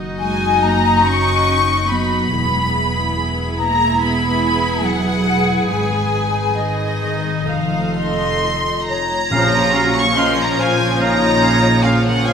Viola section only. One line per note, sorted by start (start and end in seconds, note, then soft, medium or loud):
0.00 2.27 D#4 medium
0.00 2.27 F#4 medium
2.31 5.66 E4 medium
2.31 7.44 G#4 medium
5.71 9.07 D#4 medium
7.48 9.07 A4 medium
9.31 9.71 F3 medium
9.31 10.96 C#4 medium
9.72 10.15 F#3 medium
10.15 11.81 F3 medium
11.00 11.85 D#4 medium
11.84 12.33 F3 medium
11.84 12.33 C#4 medium